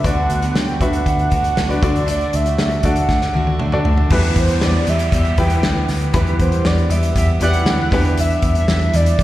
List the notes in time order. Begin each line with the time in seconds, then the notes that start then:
0.03 D2 D3 B3 D4 F#4 B4 D5 F#5, kick, closed hi-hat
0.30 D2, closed hi-hat
0.41 B3 D4 F#4, closed hi-hat
0.55 D2 G5, snare
0.68 closed hi-hat
0.81 D2 D4 F#4 B4 E5 F#5, kick, closed hi-hat
0.93 closed hi-hat
1.06 D2 F#5, kick, closed hi-hat
1.19 closed hi-hat
1.30 D2 D3 B3 D4 F#4, kick, closed hi-hat
1.44 closed hi-hat
1.55 D2 D3 B3 D4 F#4, snare
1.69 D4 F#4 B4 D5, closed hi-hat
1.81 D2 D3 A3 D4 F#4 A4 D5, kick, closed hi-hat
1.96 closed hi-hat
2.06 D3 A3 D4 F#4, closed hi-hat
2.10 D5
2.20 closed hi-hat
2.33 D2 E5, closed hi-hat
2.44 A3 D4 F#4, closed hi-hat
2.58 D2, snare
2.71 closed hi-hat
2.83 D2 D4 F#4 A4 D5 F#5, kick, closed hi-hat
2.96 closed hi-hat
3.09 D2, kick, snare
3.21 snare
3.34 D2 D3 A3 D4 F#4, high tom
3.47 high tom
3.59 D2 D3 A3 D4 F#4, mid tom
3.72 D4 F#4 A4 D5, mid tom
3.84 D2 D3 A3 D4 F#4, floor tom
3.98 floor tom
4.10 E2 B2 E3 G3 B3 E4 G4 B4, kick, crash, downlifter
4.23 closed hi-hat
4.36 E2 C5, kick, closed hi-hat
4.48 E3 G3 B3 G4, closed hi-hat
4.61 E2 D5, snare
4.87 E2 E3 G3 B3 G4 E5, closed hi-hat
4.99 closed hi-hat
5.12 E2 E3 G3 B3 G4 E5, kick, closed hi-hat
5.25 closed hi-hat
5.37 E2 E3 G3 B3 E4 G4 B4 G5, kick, closed hi-hat
5.50 closed hi-hat
5.62 D2 E3 G3 B3 G4, snare
5.88 D2, snare, open hi-hat
6.01 closed hi-hat
6.13 E2 B2 E3 G3 B3 E4 G4 B4, kick, closed hi-hat
6.27 closed hi-hat
6.39 E2 C5, kick, closed hi-hat
6.51 E3 G3 B3 G4, closed hi-hat
6.65 E2 D5, snare
6.78 closed hi-hat
6.89 E2 E3 G3 B3 G4 E5, closed hi-hat
7.03 closed hi-hat
7.14 E2 E3 G3 B3 G4 E5, kick, closed hi-hat
7.40 E2 E3 G3 B3 E4 G4 D5 F#5, closed hi-hat
7.53 closed hi-hat
7.65 D2 E3 G3 B3 G4, snare
7.91 E2 B2 E3 G3 B3 D4 E4 G4 B4, kick, snare, open hi-hat
8.05 closed hi-hat
8.17 E5, closed hi-hat
8.30 closed hi-hat
8.42 E2, kick, closed hi-hat
8.54 E3 G3 D4 E4 E5, closed hi-hat
8.68 E2, snare
8.81 closed hi-hat
8.92 E2 E3 G3 D4 E4 D5, closed hi-hat
9.06 closed hi-hat
9.17 E2 E3 G3 D4 E4, kick, closed hi-hat